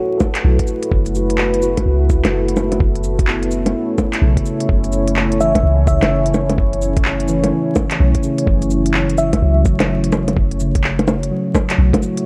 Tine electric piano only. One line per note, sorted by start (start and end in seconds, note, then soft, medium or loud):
0.00 0.72 F#4 medium
0.00 0.16 A4 medium
0.00 2.82 B4 medium
0.00 2.83 C#5 medium
0.00 2.82 E5 medium
0.18 0.87 A4 medium
0.44 1.20 E4 medium
1.16 1.61 F#4 medium
1.62 2.38 F#4 medium
2.10 2.85 E4 medium
2.30 2.99 A4 medium
3.28 4.03 B3 medium
4.22 4.98 C#3 medium
5.41 6.16 E3 medium
5.88 6.63 C#3 medium
7.28 8.04 E3 medium
8.24 9.00 C#3 medium
8.44 9.13 E3 medium
8.57 9.28 F#3 medium
9.42 10.18 F#3 medium
10.61 11.36 C#3 medium
11.31 12.07 F#3 medium
12.01 12.26 A3 medium